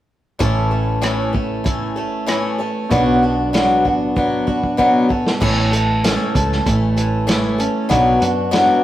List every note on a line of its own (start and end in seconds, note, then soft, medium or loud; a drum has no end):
0.39 2.87 A1 medium
0.39 0.71 A2 medium
0.39 0.71 E3 medium
0.39 0.71 A3 medium
0.39 0.70 C#4 medium
0.39 0.69 A4 medium
0.39 kick loud
0.39 closed hi-hat medium
0.71 1.01 A3 soft
0.71 1.01 C#4 soft
0.71 1.02 A4 soft
1.02 1.34 A2 medium
1.02 1.34 E3 medium
1.02 1.34 A3 medium
1.02 1.32 C#4 medium
1.02 1.31 A4 medium
1.02 cross-stick medium
1.02 closed hi-hat medium
1.33 1.64 A3 soft
1.33 1.64 C#4 soft
1.33 1.65 A4 medium
1.33 kick medium
1.64 1.96 E3 medium
1.64 1.96 A3 medium
1.64 1.96 C#4 medium
1.64 1.95 A4 medium
1.64 kick medium
1.64 closed hi-hat medium
1.96 2.26 A3 soft
1.96 2.26 C#4 medium
1.96 2.27 A4 medium
2.26 2.59 A2 medium
2.26 2.59 E3 medium
2.26 2.59 A3 medium
2.26 2.58 C#4 medium
2.26 2.57 A4 medium
2.26 cross-stick medium
2.26 closed hi-hat medium
2.58 2.91 A3 soft
2.58 2.91 C#4 medium
2.58 2.90 A4 soft
2.90 5.06 B1 medium
2.90 3.22 B2 medium
2.90 3.22 F#3 medium
2.90 3.22 B3 medium
2.90 3.22 D4 medium
2.90 3.21 F#4 medium
2.90 kick loud
2.90 closed hi-hat medium
3.22 3.53 B3 soft
3.22 3.53 D4 soft
3.22 3.53 F#4 medium
3.53 3.84 B2 medium
3.53 3.85 F#3 medium
3.53 3.85 B3 medium
3.53 3.85 D4 medium
3.53 3.83 F#4 medium
3.53 snare loud
3.53 closed hi-hat medium
3.85 4.15 B3 soft
3.85 4.16 D4 soft
3.85 4.16 F#4 medium
3.85 kick medium
4.16 4.47 F#3 medium
4.16 4.47 B3 medium
4.16 4.47 D4 medium
4.16 4.46 F#4 medium
4.16 kick loud
4.47 4.77 B3 soft
4.47 4.77 D4 soft
4.47 4.78 F#4 medium
4.47 kick medium
4.63 kick medium
4.77 5.09 B2 medium
4.77 5.10 F#3 medium
4.77 5.09 B3 medium
4.77 5.10 D4 medium
4.77 5.09 F#4 medium
4.77 kick medium
5.09 5.41 A3 soft
5.09 5.40 C#4 soft
5.09 5.40 A4 medium
5.09 kick medium
5.27 snare medium
5.40 6.16 A1 medium
5.40 5.72 A2 medium
5.40 5.72 E3 medium
5.40 5.72 A3 medium
5.40 5.71 C#4 medium
5.40 5.70 A4 medium
5.40 kick loud
5.40 crash medium
5.71 6.03 A3 soft
5.71 6.03 C#4 soft
5.71 6.03 A4 soft
5.71 closed hi-hat medium
6.04 6.35 A2 medium
6.04 6.35 E3 medium
6.04 6.35 A3 medium
6.04 6.35 C#4 medium
6.04 6.34 A4 medium
6.04 snare loud
6.04 closed hi-hat medium
6.35 6.60 C#2 medium
6.35 6.65 A3 soft
6.35 6.66 C#4 soft
6.35 6.66 A4 medium
6.35 kick medium
6.35 closed hi-hat medium
6.52 snare soft
6.66 7.66 A1 medium
6.66 6.97 E3 medium
6.66 6.97 A3 medium
6.66 6.96 C#4 medium
6.66 6.95 A4 medium
6.66 kick loud
6.66 closed hi-hat medium
6.97 7.91 E3 medium
6.97 7.26 A3 soft
6.97 7.27 C#4 soft
6.97 7.27 A4 medium
6.97 closed hi-hat medium
7.27 7.59 A2 medium
7.27 7.59 E3 medium
7.27 7.59 A3 medium
7.27 7.58 C#4 medium
7.27 7.57 A4 medium
7.27 snare loud
7.27 closed hi-hat medium
7.58 7.89 A3 soft
7.58 7.90 C#4 soft
7.58 7.90 A4 medium
7.58 closed hi-hat medium
7.89 8.16 B1 loud
7.89 8.21 B2 medium
7.89 8.21 F#3 medium
7.89 8.21 B3 medium
7.89 8.20 D4 medium
7.89 8.19 F#4 medium
7.89 kick loud
7.89 closed hi-hat medium
8.20 8.71 F#2 medium
8.20 8.51 B3 soft
8.20 8.51 D4 soft
8.20 8.52 F#4 soft
8.20 closed hi-hat medium
8.51 8.83 B2 medium
8.51 8.83 F#3 medium
8.51 8.83 B3 medium
8.51 8.84 D4 medium
8.51 8.83 F#4 medium
8.51 snare loud
8.51 closed hi-hat medium